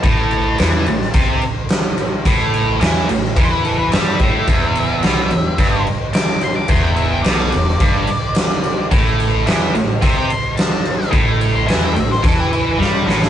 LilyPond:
<<
  \new Staff \with { instrumentName = "Lead electric guitar" } { \time 4/4 \key e \dorian \tempo 4 = 108 a''2~ a''8 r4. | r2 c''16 b'16 a'16 b'16 e''8 e''8~ | e''2~ e''8 r8 d'''8 c'''16 d'''16 | c'''16 g''16 e''16 g''16 d''2. |
r2 e''16 g''16 c'''8 a''4 | r8. c'''16 a''16 g''16 e''16 c''16 a'16 g'16 e'8 <e' g'>4 | }
  \new Staff \with { instrumentName = "Distorted electric guitar" } { \clef bass \time 4/4 \key e \dorian a,4 e8 a,8 c8 r4. | a,4 e8 a,8 e4 g8 a,8 | e,4 b,8 e,8 g,8 r4. | e,4 b,8 e,8 g,8 r4. |
a,4 e8 a,8 c8 r4. | a,4 e8 a,8 e4 g8 a,8 | }
  \new Staff \with { instrumentName = "Upright bass" } { \clef bass \time 4/4 \key e \dorian a,,4 e,8 a,,8 c,8 r4. | a,,4 e,8 a,,8 e,4 g,8 a,,8 | e,,4 b,,8 e,,8 g,,8 r4. | e,,4 b,,8 e,,8 g,,8 r4. |
a,,4 e,8 a,,8 c,8 r4. | a,,4 e,8 a,,8 e,4 g,8 a,,8 | }
  \new DrumStaff \with { instrumentName = "Drums" } \drummode { \time 4/4 <cymc bd>8 cymc8 <cymc sn>8 cymc16 sn16 <cymc bd>8 cymc8 <cymc sn>8 cymc8 | <cymc bd>8 cymc8 <cymc sn>8 cymc16 sn16 <cymc bd>8 cymc8 <cymc sn>8 <cymc bd>8 | <cymc bd>8 cymc8 <cymc sn>8 cymc8 <cymc bd>8 cymc8 <cymc sn>8 cymc8 | <cymc bd>8 cymc8 <cymc sn>8 cymc16 sn16 <cymc bd>8 cymc8 <cymc sn>8 cymc8 |
<cymc bd>8 cymc8 <cymc sn>8 cymc8 <cymc bd>8 cymc8 <cymc sn>8 cymc16 sn16 | <cymc bd>8 cymc8 <cymc sn>8 cymc16 sn16 <cymc bd>8 cymc8 sn8 sn16 sn16 | }
>>